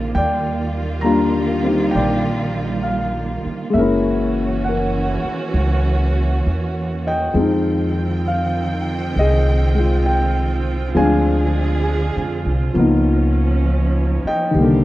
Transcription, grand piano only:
Already playing: G#3 C4 D4 G4 F5
0.15 D5 G5
1.01 G3 A#3 D4 A#5
1.06 F4
1.64 C4 D#4 G4
1.91 G5
1.95 D5
2.83 F5
3.70 G#3 A#3 E5
3.77 C#4 E4 A#4
4.64 F#5
4.69 A#4
7.07 D#5 G5
7.33 F3 G#3 C4
7.39 D#4
8.28 F5
9.19 G#4 D#5
9.75 G#3
9.79 F4
10.06 G5
10.95 F3 G#3 C4 D4 F5 G#5
12.74 F3 A#3 B3
12.79 D#4
14.27 D#5 G5
14.51 D#3 G3
14.58 D3 A#3

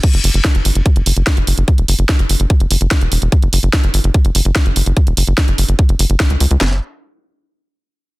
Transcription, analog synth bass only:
0.14 F#1
0.24 F#1
0.34 F#1
0.55 F#1
0.65 G1
0.75 F#1
0.96 F#1
1.06 F#1
1.16 F#1
1.37 F#1
1.47 F#1
1.58 F#1
1.78 E1
1.88 F#1
1.99 F#1
2.19 F#1
2.30 F#1
2.40 F#1
2.60 F#1
2.71 F#1
2.81 F#1
3.01 E1
3.12 E1
3.22 E1
3.42 F#1
3.53 F#1
3.63 F#1
3.84 F#1
3.94 G1
4.04 F#1
4.25 F#1
4.35 F#1
4.45 F#1
4.66 F#1
4.76 F#1
4.86 F#1
5.07 E1
5.17 F#1
5.27 F#1
5.48 F#1
5.58 F#1
5.69 F#1
5.89 F#1
5.99 F#1
6.10 F#1
6.30 C#2
6.40 C#2
6.51 C#2
6.61 F#1

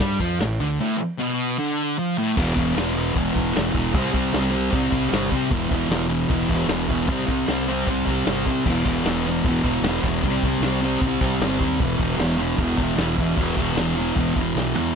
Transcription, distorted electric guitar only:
0.00 G3
0.20 F3
0.40 A2
0.60 D3
0.80 A2
0.98 muted distorted electric guitar stroke
1.19 B2
1.59 D3
1.99 F3
2.18 A2
2.36 E2 B2
2.40 E3
2.56 E3
2.60 B2
2.75 E2 B2
2.81 E3
2.94 B2 E3
2.99 E2
3.14 E2 B2
3.19 E3
3.34 E3
3.39 B2
3.54 E2 B2
3.59 E3
3.72 E3
3.77 B2
3.93 C3 G3
3.97 C4
4.13 C4
4.18 G3
4.33 C3 G3
4.39 C4
4.51 G3 C4
4.56 C3
4.71 C3 G3
4.75 C4
4.91 C4
4.97 G3
5.09 C3 G3
5.14 C4
5.31 C4
5.36 G3
5.50 E2 B2
5.55 E3
5.71 E3
5.76 B2
5.90 E2 B2
5.94 E3
6.08 B2 E3
6.13 E2
6.28 E2 B2
6.33 E3
6.50 E3
6.54 B2
6.66 E2 B2
6.72 E3
6.88 E3
6.93 B2
7.07 C3 G3
7.12 C4
7.27 C4
7.32 G3
7.47 C3 G3
7.51 C4
7.68 G3 C4
7.73 C3
7.87 C3 G3
7.91 C4
8.06 C4
8.11 G3
8.26 C3 G3
8.30 C4
8.46 C4
8.51 G3
8.65 E2 B2
8.70 E3
8.85 E3
8.90 B2
9.05 E2 B2
9.10 E3
9.25 B2 E3
9.31 E2
9.46 E2 B2
9.50 E3
9.63 E3
9.69 B2
9.83 E2 B2
9.88 E3
10.03 E3
10.09 B2
10.26 C3 G3
10.30 C4
10.45 C4
10.49 G3
10.63 C3 G3
10.68 C4
10.81 G3 C4
10.86 C3
11.02 C3 G3
11.07 C4
11.21 C4
11.26 G3
11.41 C3 G3
11.45 C4
11.60 C4
11.64 G3
11.79 E2 B2
11.84 E3
11.98 E3
12.02 B2
12.18 E2 B2
12.22 E3
12.38 B2 E3
12.43 E2
12.58 E2 B2
12.63 E3
12.78 E3
12.83 B2
12.97 E2 B2
13.01 E3
13.17 B2 E3
13.37 E2 B2
13.42 E3
13.57 E3
13.62 B2
13.77 E2 B2
13.81 E3
13.96 B2 E3
14.01 E2
14.16 E2 B2
14.20 E3
14.36 E3
14.42 B2
14.57 E2 B2
14.62 E3
14.77 E3
14.82 B2

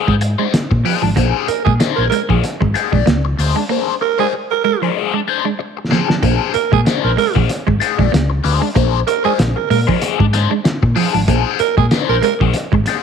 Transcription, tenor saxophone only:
1.48 A#4
1.65 G#4
1.96 A#4
2.10 A#4
4.01 A#4
4.20 G#4
4.51 A#4
4.64 A#4
6.54 A#4
6.73 G#4
7.04 A#4
7.18 A#4
9.07 A#4
9.25 G#4
9.56 A#4
9.70 A#4
11.60 A#4
11.78 G#4
12.09 A#4
12.24 A#4

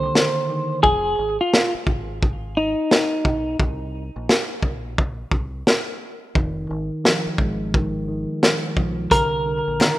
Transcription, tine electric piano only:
Already playing: D3 D#3 A#3
0.50 D#3
6.36 D#3
6.69 D#3
7.04 F3
7.39 G#3
7.73 D#3
8.08 D#3
8.76 F3
9.11 D3
9.46 D3
9.79 D#3

